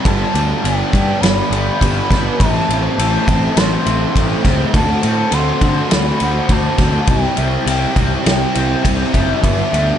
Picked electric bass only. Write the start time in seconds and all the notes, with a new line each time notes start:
0.06 G1
0.34 D2
0.64 G1
0.93 G2
1.22 G1
1.51 G1
1.81 G1
2.11 G1
2.40 A1
2.69 A1
2.98 A1
3.27 A1
3.57 A1
3.87 A1
4.16 A1
4.45 C#2
4.74 D2
5.04 A2
5.32 D2
5.62 D3
5.92 D2
6.21 D2
6.49 D2
6.79 D2
7.08 C2
7.38 C2
7.66 C2
7.96 C2
8.26 C2
8.56 C2
8.85 C2
9.14 F#1
9.43 G1
9.73 D2